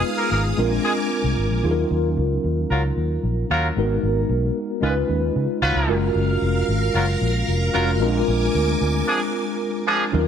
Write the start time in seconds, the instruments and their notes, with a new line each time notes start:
Already playing: tine electric piano G#3 B3 D#4 F4 B4, string machine G#4 F5 D#6
0.17 horn section A#3 A#4
0.31 fingered electric bass G#1, horn section A#3 A#4
0.57 fingered electric bass A#1, tine electric piano G#3 C4 D4 F4 A#4, string machine A#4 G#5 D6
0.85 horn section G#3 G#4
1.24 fingered electric bass C2
1.37 fingered electric bass G#1
1.50 fingered electric bass A#1
1.63 fingered electric bass D#2, tine electric piano F#3 C#4 D#4 F4 G#4
1.71 tine electric piano A#4
1.91 fingered electric bass D#2
2.17 fingered electric bass C#2
2.44 fingered electric bass D#2
2.70 fingered electric bass C#2, horn section F#3 F4 A#4
2.97 fingered electric bass D#2
3.23 fingered electric bass A#1
3.50 fingered electric bass D#2, horn section F#3 F4 A#4
3.76 fingered electric bass G#1, tine electric piano G#3 B3 D#4 F#4 A#4
4.03 fingered electric bass G#1
4.29 fingered electric bass B1
4.80 fingered electric bass C#2, tine electric piano G#3 C#4 D#4 F4 A#4, horn section G#3 F4 B4
4.89 tine electric piano B4
5.09 fingered electric bass D#2
5.36 fingered electric bass C#3
5.62 fingered electric bass C#2, horn section F#3 F4 B4
5.75 fingered electric bass C#2
5.87 fingered electric bass F#1, tine electric piano G#3 C#4 F4 F#4 A#4, string machine A#4 F5 F6
6.15 fingered electric bass F#1
6.42 fingered electric bass F1
6.68 fingered electric bass G#1
6.94 fingered electric bass F#1, horn section F#3 F4 A#4
7.21 fingered electric bass A#1
7.48 fingered electric bass F1
7.74 fingered electric bass F1, horn section F#3 F4 A#4, tine electric piano G#3 C#4 F4 F#4 A#4
7.99 fingered electric bass A#1, tine electric piano G#3 C4 D4 F4 A#4, string machine G#5 D6
8.28 fingered electric bass A#1
8.54 fingered electric bass D2
8.81 fingered electric bass D2
9.07 horn section F3 D4 G#4
9.87 horn section F3 D4 G#4
10.12 fingered electric bass D#2, tine electric piano F#3 C#4 D#4 F4 A#4